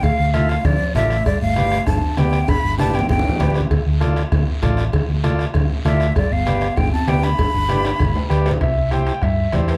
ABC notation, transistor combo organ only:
X:1
M:4/4
L:1/8
Q:1/4=196
K:Gmix
V:1 name="Transistor combo organ"
z2 [FAf] z3 [FAd] z | z2 [GBd] z3 [GBd] z | z2 [GBd] z3 [GBd] z | z2 [FAd] z3 [FAd] z |
z2 [FAd] z3 [FAd] z | z2 [GBd] z3 [GBd] z | z2 [GBd] z3 [GBd] z | z2 [EGc] z3 [EGc] z |]